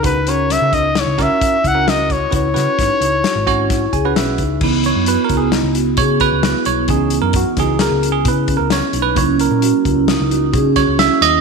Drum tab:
CC |----------|----------|x---------|----------|
HH |xxxxxxxxxx|xxxxxxxxxx|-xxxxxxxxx|xxxxxxxxxx|
SD |--o-oo--o-|-oo-o-o-o-|----o---o-|---oo---o-|
BD |o--o-ooo-o|o-o--ooo-o|o--o--oo--|o-oo--oo--|

CC |----------|
HH |xxxxxxxxxx|
SD |----o--ooo|
BD |o--o--oo--|